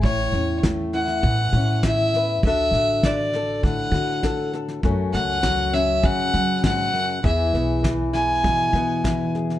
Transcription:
<<
  \new Staff \with { instrumentName = "Fiddle" } { \time 4/4 \key a \major \tempo 4 = 100 cis''4 r8 fis''4. e''4 | e''4 d''4 fis''4. r8 | r8 fis''4 e''8 fis''4 fis''4 | e''4 r8 gis''2 r8 | }
  \new Staff \with { instrumentName = "Nylon-string guitar" } { \time 4/4 \key a \major << { r8 cis'4 e'4 cis'8 e'8 b'8 | <d' fis' a'>8 fis'4 a'4 fis'8 a'8 a'8 | <fis a cis' a'>8 a4 cis'2~ cis'8 | <e b e' gis'>8 b4 e'4 b8 e'8 gis'8 | } \\ { a,4 a4 e,2 | d4 d'4 a,2 | fis,4 fis4 cis4 gis,8 fis,8 | e,4 e4 b,2 | } >> }
  \new Staff \with { instrumentName = "Upright bass" } { \clef bass \time 4/4 \key a \major a,,8 e,4. a,8 a,4. | d,8 a,,4. d8 d4. | fis,8 cis,4. fis8 fis4. | e,8 b,,4. e8 e4. | }
  \new DrumStaff \with { instrumentName = "Drums" } \drummode { \time 4/4 <bd sn>8 sn8 <bd sn>8 sn16 sn16 <bd sn>8 sn8 <bd sn>8 sn8 | <bd sn>8 sn8 <bd sn>8 sn8 <bd sn>8 sn8 <bd sn>8 sn16 sn16 | <bd sn>8 sn8 <bd sn>8 sn8 <bd sn>8 sn8 <bd sn>8 sn8 | <bd sn>8 sn8 <bd sn>8 sn8 <bd sn>8 sn8 <bd sn>8 sn16 sn16 | }
>>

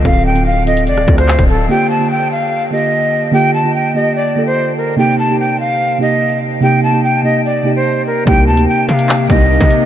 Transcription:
<<
  \new Staff \with { instrumentName = "Flute" } { \time 4/4 \key g \minor \tempo 4 = 146 f''8 g''8 f''8 ees''8 d''8. c''8. a'8 | g''8 a''8 g''8 f''4 ees''4. | g''8 a''8 g''8 ees''8 d''8. c''8. bes'8 | g''8 a''8 g''8 f''4 ees''4. |
g''8 a''8 g''8 ees''8 d''8. c''8. bes'8 | g''8 a''8 g''8 f''4 ees''4. | }
  \new Staff \with { instrumentName = "Synth keys" } { \time 4/4 \key g \minor <d c' f' a'>8. <d c' f' a'>8. <d c' f' a'>4 <d c' f' a'>4. | <d bes f' g'>8. <d bes f' g'>4. r16 <d bes f' g'>4. | <d bes f' g'>8. <d bes f' g'>8. <d bes f' g'>4 <d bes f' a'>4. | <c bes ees' g'>8. <c bes ees' g'>4. r16 <c bes ees' g'>4. |
<c bes ees' g'>8. <c bes ees' g'>8. <c bes ees' g'>4 <c bes ees' g'>4. | <c bes ees' g'>8. <c bes ees' g'>4. r16 <c bes ees' g'>4. | }
  \new Staff \with { instrumentName = "Analog synth pad" } { \time 4/4 \key g \minor r1 | r1 | r1 | r1 |
r1 | <c bes ees'>1 | }
  \new Staff \with { instrumentName = "808-style bass" } { \clef bass \time 4/4 \key g \minor d,,2 f,,16 d,,16 d,8. d,,8. | r1 | r1 | r1 |
r1 | c,8 d,8 r8 c4 c,8. c8. | }
  \new DrumStaff \with { instrumentName = "Drums" } \drummode { \time 4/4 <hh bd>8. hh16 r8 hh16 hh16 hh16 ss16 bd16 <hh ss>16 hc16 <hh bd>8. | r4 r4 r4 r4 | r4 r4 r4 r4 | r4 r4 r4 r4 |
r4 r4 r4 r4 | <hh bd>8. hh16 r8 hh16 hh16 hc8 <hh bd>8 r16 <hh bd>16 hh8 | }
>>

